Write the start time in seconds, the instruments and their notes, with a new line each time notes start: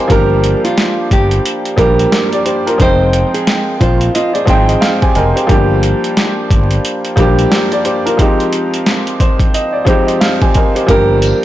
Already playing: upright piano F3 G#3 C4 D#4 G4 A#4 C5 D5 D#5 F5 G#5
0.08 fretless electric bass G1, upright piano F3 G3 A#3 D4, nylon-string guitar A#4, kick, closed hi-hat
0.12 upright piano G4
0.44 closed hi-hat
0.64 nylon-string guitar F4, closed hi-hat
0.78 snare, closed hi-hat
1.11 fretless electric bass G1, nylon-string guitar G4, kick, closed hi-hat
1.31 closed hi-hat
1.45 closed hi-hat
1.65 closed hi-hat
1.76 fretless electric bass A#1, upright piano F3 G3 A#3 D4, nylon-string guitar A#4, kick, closed hi-hat
1.81 upright piano G4
1.99 closed hi-hat
2.12 upright piano G4 C5, snare, closed hi-hat
2.33 upright piano G4 D5, closed hi-hat
2.45 upright piano G4 C5, closed hi-hat
2.67 upright piano F4 A#4, closed hi-hat
2.78 fretless electric bass F1, upright piano F3 G#3 C4 D#4, nylon-string guitar C5, kick, closed hi-hat
2.82 upright piano G5
3.13 closed hi-hat
3.34 nylon-string guitar G#4, closed hi-hat
3.47 snare, closed hi-hat
3.80 fretless electric bass A#1, nylon-string guitar F4, upright piano C5, kick, closed hi-hat
4.01 closed hi-hat
4.15 nylon-string guitar F4, upright piano D#5, closed hi-hat
4.33 nylon-string guitar G#4, upright piano D5, closed hi-hat
4.45 fretless electric bass G#1, upright piano F3 G#3 C4 D#4 C5, nylon-string guitar G#4, kick, closed hi-hat
4.50 upright piano G5
4.68 upright piano D#5, closed hi-hat
4.81 upright piano F5, snare, closed hi-hat
5.02 upright piano G4 C5 G#5, kick, closed hi-hat
5.15 fretless electric bass F1, upright piano A#4 D#5 G#5, closed hi-hat
5.36 upright piano G4 C5, closed hi-hat
5.47 fretless electric bass G1, upright piano F3 G3 A#3 D4, kick, closed hi-hat
5.51 upright piano G4
5.83 closed hi-hat
6.04 closed hi-hat
6.17 snare, closed hi-hat
6.51 fretless electric bass G1, kick, closed hi-hat
6.71 closed hi-hat
6.85 closed hi-hat
7.05 closed hi-hat
7.16 fretless electric bass A#1, upright piano F3 G3 A#3 D4, kick, closed hi-hat
7.20 upright piano G4
7.39 closed hi-hat
7.51 upright piano G4 C5, snare, closed hi-hat
7.72 upright piano G4 D5, closed hi-hat
7.85 upright piano G4 C5, closed hi-hat
8.06 upright piano F4 A#4, closed hi-hat
8.17 upright piano F3 G#3 C4 D#4, kick, closed hi-hat
8.21 upright piano G4
8.40 closed hi-hat
8.53 closed hi-hat
8.74 closed hi-hat
8.86 snare, closed hi-hat
9.07 closed hi-hat
9.20 upright piano C5, kick, closed hi-hat
9.40 kick, closed hi-hat
9.54 upright piano D#5, closed hi-hat
9.73 upright piano D5
9.85 upright piano F3 G#3 C4 D#4 C5, kick, closed hi-hat
9.89 upright piano G4
10.07 upright piano D#5, closed hi-hat
10.20 upright piano F5, snare, closed hi-hat
10.42 upright piano G4 C5 G#5, kick, closed hi-hat
10.54 upright piano A#4 D#5 G#5, kick, closed hi-hat
10.75 upright piano G4 C5, closed hi-hat
10.86 fretless electric bass G1, upright piano F3 G3 A#3 D4, nylon-string guitar A#4, kick, closed hi-hat
10.91 upright piano G4
11.22 closed hi-hat, tambourine